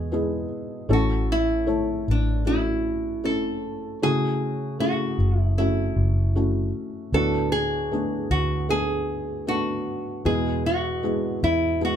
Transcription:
Already playing: E2 G#3 B3 E4 F#4 G#4
0.12 G#3 B3 E4 G#4
0.89 A1 A2 E3 A3 C#4 E4 A4
0.93 F#4
1.32 E4
1.67 A3 E4 A4 C#5
2.08 A1 D4
2.46 A3 C#4 E4 F#4
3.24 A3 C#4 E4 A4
4.02 F#1 C#3 A3 C#4 E4 F#4 G#4
4.79 A3 C#4 E4 F#4 G#4
5.18 F#1
5.39 E4
5.58 A3 C#4 E4 F#4
5.96 F#1
6.36 A3 C#4 E4 F#4
7.12 D2 A2 A3 B3 D4 F#4 A4
7.52 G#4
7.92 A3 B3 D4 G#4
8.31 D2 F#4
8.69 A3 B3 D4 G#4
9.47 A3 B3 D4 F#4 A4
10.25 E2 B2 G#3 B3 E4 G#4
10.66 F#4
11.03 G#3 B3 E4 G#4
11.43 E2 E4
11.81 G#3 B3 E4 F#4 G#4

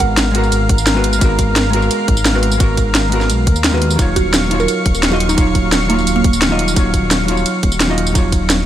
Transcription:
Already playing: G#1 G#3 B3 F#4 A#4 F5
0.00 F#5, kick, closed hi-hat, ride bell, tambourine
0.17 snare, closed hi-hat, ride bell, tambourine
0.32 G#3 B3, closed hi-hat, ride bell
0.36 F#4 A#4
0.43 tambourine
0.52 G#1, closed hi-hat, ride bell, tambourine
0.69 kick, closed hi-hat, ride bell
0.78 tambourine
0.87 snare, closed hi-hat, ride bell, tambourine
0.94 G#3 B3 F#4 B4
1.04 closed hi-hat, ride bell
1.13 tambourine
1.18 G#1 G#3 B3, kick, closed hi-hat, ride bell, tambourine
1.23 F#4 A#4
1.39 kick, closed hi-hat, ride bell, tambourine
1.56 snare, closed hi-hat, ride bell, tambourine
1.70 G#3 B3, closed hi-hat, ride bell
1.74 F#4 A#4
1.82 tambourine
1.91 closed hi-hat, ride bell, tambourine
2.08 G#1, kick, closed hi-hat, ride bell
2.17 tambourine
2.25 snare, closed hi-hat, ride bell, tambourine
2.33 G#3 B3 F#4 B4
2.43 closed hi-hat, ride bell
2.52 tambourine
2.57 G#1 G#3 B3, kick, closed hi-hat, ride bell, tambourine
2.61 F#4 A#4
2.77 kick, closed hi-hat, ride bell, tambourine
2.95 snare, closed hi-hat, ride bell, tambourine
3.09 G#3 B3, closed hi-hat, ride bell
3.13 F#4 A#4
3.21 snare, tambourine
3.30 B1, closed hi-hat, ride bell, tambourine
3.47 D#2, kick, closed hi-hat, ride bell
3.56 tambourine
3.64 snare, closed hi-hat, ride bell, tambourine
3.72 D#2 G#3 B3 F#4 B4
3.82 closed hi-hat, ride bell
3.90 tambourine
3.96 D#1 F#3 D#4 F5 C#6, kick, closed hi-hat, ride bell, tambourine
4.00 F4 C#5
4.16 F#4, kick, closed hi-hat, ride bell, tambourine
4.34 snare, closed hi-hat, ride bell, tambourine
4.48 F#3 D#4 F4, closed hi-hat, ride bell
4.54 C#5
4.60 A#4, tambourine
4.68 closed hi-hat, ride bell, tambourine
4.86 D#1, kick, closed hi-hat, ride bell
4.95 tambourine
5.03 snare, closed hi-hat, ride bell, tambourine
5.10 F#3 D#4 F4 F#4 D#5
5.20 closed hi-hat, ride bell
5.29 D#4, tambourine
5.35 D#1 F#3 D#4 F4, kick, closed hi-hat, ride bell, tambourine
5.41 C#5
5.55 kick, closed hi-hat, ride bell, tambourine
5.72 snare, closed hi-hat, ride bell, tambourine
5.87 F#3 A#3 D#4, closed hi-hat, ride bell
5.91 F4 C#5
5.99 tambourine
6.07 D#1, closed hi-hat, ride bell, tambourine
6.16 A#3
6.24 kick, closed hi-hat, ride bell
6.33 tambourine
6.42 snare, closed hi-hat, ride bell, tambourine
6.49 F#3 D#4 F4 D#5
6.59 closed hi-hat, ride bell
6.68 tambourine
6.73 D#1 F#3 D#4, kick, closed hi-hat, ride bell, tambourine
6.77 F4 C#5
6.94 kick, closed hi-hat, ride bell, tambourine
7.11 snare, closed hi-hat, ride bell, tambourine
7.25 F#3 D#4, closed hi-hat, ride bell
7.29 F4 C#5
7.37 tambourine
7.46 closed hi-hat, ride bell, tambourine
7.63 D#1, kick, closed hi-hat, ride bell
7.72 tambourine
7.80 snare, closed hi-hat, ride bell, tambourine
7.88 F#3 D#4 F4 D#5
7.98 closed hi-hat, ride bell
8.07 tambourine
8.12 D#1 F#3 D#4, kick, closed hi-hat, ride bell, tambourine
8.16 F4 C#5
8.32 kick, closed hi-hat, ride bell, tambourine
8.50 snare, closed hi-hat, ride bell, tambourine

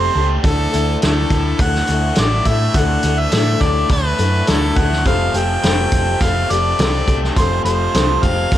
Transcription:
Already playing: F3 G3 A3 C4 G4 A4 C5
0.15 C#2 A3 C4 G4 A4
0.43 D2 D3 F#3 A3 D4 E4 A4, kick, closed hi-hat
0.72 D2 D3 A3 D4 E4 A4, closed hi-hat
1.02 D2 D3 F#3 A3 D4 E4 A4, snare, closed hi-hat
1.30 D2 E4, kick, closed hi-hat
1.59 D2 A3 D4 E4 F#5, kick, closed hi-hat
1.63 A4
1.75 snare
1.87 D2 F#4 A4, closed hi-hat
1.92 A3 D4 E4
2.15 A1 D3 F#3 A3 E4, snare, closed hi-hat
2.20 D4 E4 A4 D5
2.45 A2 A3 E4 A4 E5, kick, closed hi-hat
2.50 A3 D4
2.74 D2 D3 F#3 A3 D4 E4 F#5, kick, closed hi-hat
2.79 A4
3.03 D2 D3 E4 A4, closed hi-hat
3.07 A3 D4
3.20 E5
3.32 A2 D3 F#3 A3 D4 E4 A4, snare, closed hi-hat
3.61 D2 E4 D5, kick, closed hi-hat
3.89 D2 A3 D4 E4 A4 B4, kick, closed hi-hat
4.18 F#2 A3 D4 E4 F#4 A4, closed hi-hat
4.47 D2 D3 F#3 A3 D4 E4 A4, snare, closed hi-hat
4.76 D2 A3 D4 E4 A4 F#5, kick, closed hi-hat
4.93 snare
5.06 F1 F3 G3 C4 G4 A4 F5, kick, closed hi-hat
5.34 F1 F3 C4 G4 A4 G5, closed hi-hat
5.62 F1 F3 G3 A3 C4 G4 A4, snare, closed hi-hat
5.92 F1 C4, kick, closed hi-hat
6.20 F1 G3 A3 C4 G4 A4 F5, kick, closed hi-hat
6.50 F1 C4 G4 A4 D5, closed hi-hat
6.79 C2 F3 G3 C4 G4 A4, snare, closed hi-hat
7.08 C2 A3 C4 G4 A4, kick, closed hi-hat
7.24 snare
7.36 F1 F3 G3 C4 G4 A4 C5, kick, closed hi-hat
7.64 F1 F3 C4 G4 A4 C5, closed hi-hat
7.94 C2 F3 G3 A3 C4 G4 A4, snare, closed hi-hat
8.23 F1 C4 F5, kick, closed hi-hat
8.51 F1 G3 A3 C4 G4 A4, kick, closed hi-hat

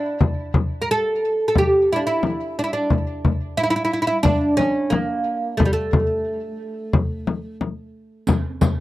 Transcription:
Already playing: D4
0.21 frame drum
0.54 frame drum
0.82 A#4
0.91 A4
1.48 A4
1.55 G4, frame drum
1.93 D4 E4
2.07 E4
2.23 frame drum
2.59 D4
2.64 E4
2.73 D4
2.90 frame drum
3.25 frame drum
3.57 E4
3.64 E4
3.70 E4
3.76 E4
3.85 E4
3.93 E4
4.02 E4
4.07 E4
4.23 D4, frame drum
4.57 C#4, frame drum
4.90 A#3, frame drum
5.57 A3, frame drum
5.65 G3
5.73 A3
5.93 frame drum
6.93 frame drum
7.27 frame drum
7.61 frame drum
8.27 riq, frame drum
8.61 riq, frame drum

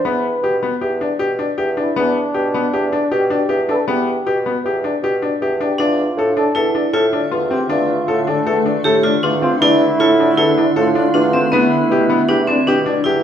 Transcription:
0.04 E2 B3 B4
0.42 B2 G4
0.63 B3
0.81 E2 G4
1.01 D4
1.19 B2 G4
1.39 D4
1.58 E2 G4
1.77 D4 E4
1.96 E2 B3 D4
2.34 B2 G4
2.54 B3
2.73 E2 G4
2.92 D4
3.11 B2 G4
3.30 D4
3.49 E2 G4
3.69 D4 A4
3.73 B4
3.78 A4
3.87 E2 B3 G4
4.26 B2 G4
4.46 B3
4.64 E2 G4
4.84 D4
5.02 B2 G4
5.22 D4
5.41 E2 G4
5.61 D4 G4
5.78 E2 D3 A3 D4 F4 E5
6.17 A2 A4
6.37 D4 A4
6.55 E2 E4 A4
6.75 D4
6.93 A2 F4 A4
7.13 D4
7.31 E2 F4
7.50 C4 G4
7.69 E2 D4 F4
8.08 A2 A4
8.27 D4 A4
8.46 E2 A4
8.66 D4
8.84 A2 G4 A4
9.03 D4 F4
9.23 E2 D4 F4
9.41 C4 F4
9.59 E2 D4 E4
10.00 A2 F4 A4
10.20 D4
10.37 E2 E4 A4
10.58 D4
10.76 A2 F4 A4
10.95 D4
11.14 E2 D4 F4
11.33 C4
11.51 E2 G3 B3 E4
11.89 B2 G4
12.10 B3
12.28 E2 D4 G4
12.47 C4 D4
12.66 B2 D4 G4
12.86 D4
13.04 E2 E4 G4

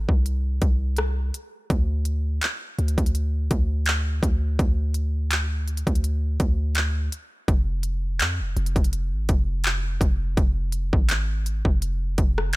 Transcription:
0.09 C2, kick
0.26 closed hi-hat
0.62 C2, kick, closed hi-hat
0.97 cross-stick, closed hi-hat
1.34 closed hi-hat
1.70 D2, kick, closed hi-hat
2.05 closed hi-hat
2.42 clap, closed hi-hat
2.79 D2, closed hi-hat
2.88 closed hi-hat
2.98 D2, kick, closed hi-hat
3.06 closed hi-hat
3.15 closed hi-hat
3.51 D2, kick, closed hi-hat
3.86 clap, closed hi-hat
4.23 D2, kick, closed hi-hat
4.59 D2, kick, closed hi-hat
4.94 closed hi-hat
5.31 clap, closed hi-hat
5.68 closed hi-hat
5.77 closed hi-hat
5.87 D2, kick, closed hi-hat
5.95 closed hi-hat
6.04 closed hi-hat
6.40 D2, kick, closed hi-hat
6.75 clap, closed hi-hat
7.12 closed hi-hat
7.48 F1, kick, closed hi-hat
7.83 closed hi-hat
8.20 F2, clap, closed hi-hat
8.40 F1
8.57 F1, closed hi-hat
8.66 closed hi-hat
8.76 F1, kick, closed hi-hat
8.84 closed hi-hat
8.93 closed hi-hat
9.12 G#1
9.29 F1, kick, closed hi-hat
9.64 clap, closed hi-hat
10.01 F1, kick, closed hi-hat
10.37 F1, kick, closed hi-hat
10.72 closed hi-hat
10.93 G#1, kick
11.09 clap, closed hi-hat
11.46 closed hi-hat
11.65 F1, kick
11.82 closed hi-hat
12.18 F1, kick, closed hi-hat
12.38 cross-stick
12.53 closed hi-hat

